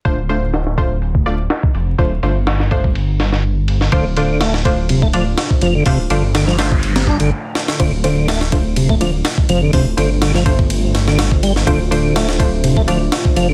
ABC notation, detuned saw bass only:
X:1
M:4/4
L:1/8
Q:"Swing 16ths" 1/4=124
K:Dm
V:1 name="Detuned saw bass" clef=bass
D,,,6 z F,,, | D,,, G,,,6- G,,, | D,,,6 z F,,, | D,,, G,,,4- G,,, z2 |
D,,,6 z F,,, | D,,, G,,,6- G,,, | D,,,6 z F,,, |]